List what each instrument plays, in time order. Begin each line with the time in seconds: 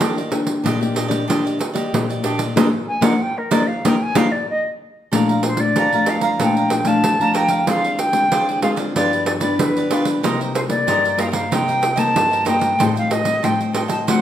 0.00 nylon-string guitar D#3 A#3 D4 G4, cavaquinho D4 G4 D5 D#5, pandeiro
0.17 cavaquinho G4 D5 D#5, pandeiro
0.30 nylon-string guitar A#3 D4 G4, muted cavaquinho stroke, pandeiro
0.47 pandeiro
0.64 nylon-string guitar A#2, cavaquinho D4 G4 D5 D#5, pandeiro
0.81 nylon-string guitar A#3 D4 G4, cavaquinho G4 D5 D#5, pandeiro
0.94 cavaquinho D4 G4 D5 D#5, pandeiro
1.08 nylon-string guitar A#3 D4 G4, cavaquinho G4 D5 D#5, pandeiro
1.28 nylon-string guitar D#3 A#3 D4 G4, cavaquinho D4 G4 D5 D#5, pandeiro
1.45 cavaquinho G4 D5 D#5, pandeiro
1.59 muted cavaquinho stroke, pandeiro
1.73 nylon-string guitar A#3 G4, cavaquinho G4 D5 D#5, pandeiro
1.93 nylon-string guitar A#2, pandeiro
2.09 cavaquinho G4 D5 D#5, pandeiro
2.23 nylon-string guitar A#3 D4 G4, cavaquinho D4 G4 D5 D#5, pandeiro
2.38 cavaquinho G4 D5 D#5, pandeiro
2.56 nylon-string guitar A#3 D4 D#4, cavaquinho A#4 D5 D#5, pandeiro
2.88 flute G#5
3.01 nylon-string guitar A#3 D4 D#4, cavaquinho A#4 D5 D#5, flute F#5, pandeiro
3.21 flute G5
3.38 flute A#4
3.51 nylon-string guitar A#3 D4 D#4, cavaquinho A#4 D5 D#5, flute D5, pandeiro
3.67 flute F5
3.85 nylon-string guitar A#3 D4 D#4, cavaquinho A#4 D5 D#5, flute G5, pandeiro
4.02 flute G#5
4.15 nylon-string guitar A#3 D4 D#4, cavaquinho A#4 D5 D#5, flute F5, pandeiro
4.31 flute D5
4.50 flute D#5
5.12 nylon-string guitar A#2 F3 A3 D4, cavaquinho A4 D5 F5 A#5, pandeiro
5.29 cavaquinho D5 F5 A#5, pandeiro
5.43 flute C5, muted cavaquinho stroke, pandeiro
5.57 nylon-string guitar F3 A3 D4, flute D5, pandeiro
5.76 nylon-string guitar F2, cavaquinho A4 D5 F5 A#5, pandeiro
5.93 nylon-string guitar F3 A3 D4, cavaquinho D5 F5 A#5, pandeiro
6.06 cavaquinho A4 D5 F5 A#5, flute F5, pandeiro
6.21 cavaquinho D5 F5 A#5, flute F5, pandeiro
6.39 nylon-string guitar A#2 F3 A3 D4, cavaquinho A4 D5 F5 A#5, flute G5, pandeiro
6.56 cavaquinho D5 F5 A#5, pandeiro
6.70 muted cavaquinho stroke, pandeiro
6.84 nylon-string guitar F3 A3 D4, cavaquinho D5 F5, flute A5, pandeiro
7.02 nylon-string guitar F2, pandeiro
7.19 nylon-string guitar F3 A3 D4, cavaquinho D5 F5 A#5, pandeiro
7.34 cavaquinho A4 D5 F5 A#5, flute G5, pandeiro
7.48 cavaquinho D5 F5 A#5, pandeiro
7.66 nylon-string guitar D3 G#3 C4 F4, cavaquinho F4 G#4 C5 D5, flute F5, pandeiro
7.84 cavaquinho G#4 C5 D5, pandeiro
7.98 flute G5, muted cavaquinho stroke, pandeiro
8.12 nylon-string guitar G#3 C4 F4, pandeiro
8.31 nylon-string guitar D3, cavaquinho F4 G#4 C5 D5, pandeiro
8.49 cavaquinho G#4 C5 D5, pandeiro
8.62 nylon-string guitar G#3 C4 F4, cavaquinho F4 G#4 C5 D5, flute F5, pandeiro
8.76 cavaquinho G#4 C5 D5, pandeiro
8.95 nylon-string guitar G2 F3 B3 D4, cavaquinho F4 G4 B4 D5, flute D5, pandeiro
9.13 cavaquinho G4 B4, pandeiro
9.26 flute D5, muted cavaquinho stroke, pandeiro
9.40 nylon-string guitar F3 B3 D4, cavaquinho G4 B4 D5, flute D5, pandeiro
9.59 nylon-string guitar D3, flute B4, pandeiro
9.77 cavaquinho G4 B4 D5, pandeiro
9.90 nylon-string guitar F3 B3 D4, cavaquinho F4 G4 B4 D5, pandeiro
10.05 cavaquinho G4 B4 D5, pandeiro
10.23 nylon-string guitar C3 G3 A#3 D#4, cavaquinho D#4 A#4 C5 D#5, pandeiro
10.40 cavaquinho A#4 C5 D#5, pandeiro
10.54 flute C5, muted cavaquinho stroke, pandeiro
10.68 nylon-string guitar G3 A#3 D#4, flute D5, pandeiro
10.87 nylon-string guitar G2, cavaquinho D#4 A#4 C5 D#5, pandeiro
11.04 cavaquinho A#4 C5 D#5, pandeiro
11.18 nylon-string guitar G3 A#3 D#4, cavaquinho D#4 A#4 C5 D#5, flute F5, pandeiro
11.31 cavaquinho A#4 C5 D#5, flute F5 G5, pandeiro
11.51 nylon-string guitar C3 G3 A#3 D#4, cavaquinho D#4 A#4 C5 D#5, flute G5, pandeiro
11.68 cavaquinho A#4 C5 D#5, pandeiro
11.82 muted cavaquinho stroke, pandeiro
11.96 nylon-string guitar G3 A#3 D#4, cavaquinho A#4 C5 D#5, flute A5, pandeiro
12.16 nylon-string guitar G2, pandeiro
12.31 cavaquinho A#4 C5 D#5, pandeiro
12.45 nylon-string guitar G3 A#3 D#4, cavaquinho D#4 A#4 C5 D#5, flute G5, pandeiro
12.59 cavaquinho A#4 C5 D#5, pandeiro
12.79 nylon-string guitar A2 G3 C4 D#4, cavaquinho A4 C5 D#5 G5, pandeiro
12.96 cavaquinho C5 D#5 G5, flute F5, pandeiro
13.10 flute D#5, muted cavaquinho stroke, pandeiro
13.25 nylon-string guitar G3 C4 D#4, pandeiro
13.43 nylon-string guitar A2, cavaquinho A4 C5 D#5 G5, flute G5, pandeiro
13.60 cavaquinho C5 D#5 G5, pandeiro
13.73 nylon-string guitar G3 C4 D#4, cavaquinho A4 C5 D#5 G5, flute G5, pandeiro
13.88 cavaquinho C5 D#5 G5, flute A5, pandeiro
14.07 nylon-string guitar D3 A3 C4 F#4, cavaquinho D4 C5 D5 F#5, flute F#5, pandeiro